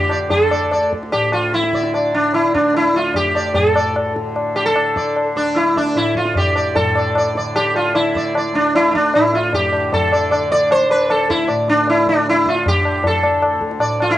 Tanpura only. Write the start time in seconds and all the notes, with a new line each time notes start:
Already playing: D2 A2 D3
0.49 D2
1.13 A2
1.72 D3
2.32 D3
2.93 D2
3.53 A2
4.15 D3
4.74 D3
5.35 D2
5.94 A2
6.55 D3
6.77 A2
7.36 D3
7.95 D3
8.52 D2
9.14 A2
9.74 D3
10.32 D3
10.90 D2
11.48 A2
12.06 D3
12.66 D3
13.22 D2
13.78 A2